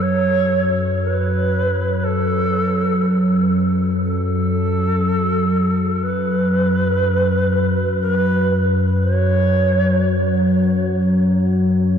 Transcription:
Already playing: F#2 F#3 C#5
0.02 C#5
1.02 B4
2.03 A4
4.04 A4
6.03 B4
8.01 A#4
8.13 B4
9.02 C5
9.14 C#5

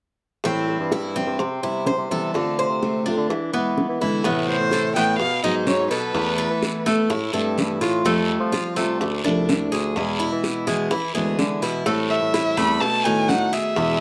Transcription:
0.44 A2 E3 G3 C4 E4, high bongo
0.68 high bongo
0.79 G2
0.92 E3 G3 C4 E4, high bongo
1.16 G3 C4 E4, high bongo
1.27 G2
1.39 C3, muted steel-string acoustic guitar stroke, high bongo
1.63 C3 G3 B3 E4
1.86 C5, high bongo, low bongo
1.98 C3
2.10 C3 E3 G3 B3 E4 A4, high bongo
2.34 D3 A3 C4 F4, high bongo
2.59 C5, high bongo
2.69 C3
2.82 D3 A3 C4 F4, high bongo
3.06 A3 C4 D4 F4, high bongo
3.17 D3
3.29 E3, muted steel-string acoustic guitar stroke, high bongo
3.53 E3 G#3 B3 E4
3.78 high bongo, low bongo
3.89 E3
4.00 D3 E3 G#3 B3 E4, high bongo
4.24 A2 C3 E3 A3 B3 E4, high bongo, long guiro
4.48 C5, high bongo
4.60 A2
4.71 A4, high bongo, short guiro
4.96 A2 E3 A3 B3 E4 G5, high bongo, short guiro
5.19 B2 F5, muted steel-string acoustic guitar stroke, high bongo, long guiro
5.43 G#2 F#3 B3 D#4 F#4 D#5
5.67 F#3 B3 D#4 F#4 C#5, high bongo, low bongo, short guiro
5.90 B2 A4 B4, high bongo, short guiro
6.14 E2 E3 A3 B3 E4, high bongo, long guiro
6.38 A4, high bongo
6.50 E3
6.63 high bongo, short guiro
6.86 A3 B3 E4, high bongo, short guiro
7.09 A2 E4, muted steel-string acoustic guitar stroke, high bongo, long guiro
7.33 G2 A3 C4 E4 A4
7.57 E3 A3 C4 E4, high bongo, low bongo, short guiro
7.81 A2 F4, high bongo, short guiro
8.04 F2 F3 G3 A3 C4 F4, high bongo, long guiro
8.29 high bongo
8.40 F3
8.52 F4, high bongo, short guiro
8.76 C3 G3 A3 C4 F4, high bongo, short guiro
9.00 D2, muted steel-string acoustic guitar stroke, high bongo, long guiro
9.24 C2 F3 A3 D4 E4
9.49 F3 A3 D4 E4, high bongo, low bongo, short guiro
9.72 D2 G#4, high bongo, short guiro
9.96 E2 B2 E3 G#3 B3 E4, high bongo, long guiro
10.20 E4, high bongo
10.32 E3
10.44 high bongo, short guiro
10.67 B2 E3 G#3 B3 E4, high bongo, short guiro
10.91 E3 E4, muted steel-string acoustic guitar stroke, high bongo, long guiro
11.14 D2 E3 G#3 B3 E4 G#4
11.38 D3 E3 G#3 B3 E4, high bongo, low bongo, short guiro
11.62 B2 E4, high bongo, short guiro
11.86 A2 E3 G3 A3 C4 E4, high bongo, long guiro
12.10 E5, high bongo
12.22 A2
12.34 E4, high bongo, short guiro
12.57 E2 G3 A3 C4 E4 B5, high bongo, short guiro
12.81 B2 A5, muted steel-string acoustic guitar stroke, high bongo, long guiro
13.04 A2 D#3 A3 B3 D#4 F#4 G#5
13.29 D#3 A3 B3 F#4 F#5, high bongo, low bongo, short guiro
13.53 G#4 E5, high bongo, short guiro
13.76 E2 B2 E3 G#3 B3 E4, high bongo, long guiro

